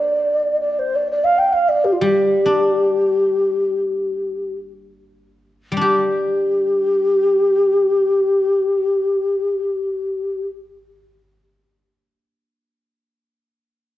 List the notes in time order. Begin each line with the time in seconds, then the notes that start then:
Already playing: A#3 C4 D4 G4 D5
0.60 D5
0.79 C5
0.95 D5
1.11 D5
1.24 F5
1.38 G5
1.53 F5
1.68 D5
1.84 G4
1.92 F4
2.01 G3 G4
2.46 D4
5.72 G3
5.77 D4
5.81 G4